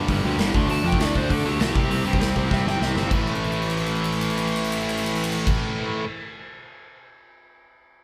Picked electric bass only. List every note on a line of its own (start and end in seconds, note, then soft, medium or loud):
0.09 0.20 G1 medium
0.24 0.36 D2 medium
0.38 0.50 G1 medium
0.54 0.66 D2 medium
0.68 0.80 D2 medium
0.84 0.95 F2 medium
0.99 1.10 D2 medium
1.15 1.27 D2 medium
1.30 1.42 D3 medium
1.45 1.57 D2 medium
1.60 1.71 B1 medium
1.75 1.87 C2 medium
1.90 2.01 C2 medium
2.05 2.17 G2 medium
2.20 2.32 C2 medium
2.36 2.48 C2 medium
2.51 2.63 C2 medium
2.65 2.77 G1 medium
2.81 2.93 C2 medium
2.95 3.07 G1 medium
3.11 5.48 A1 medium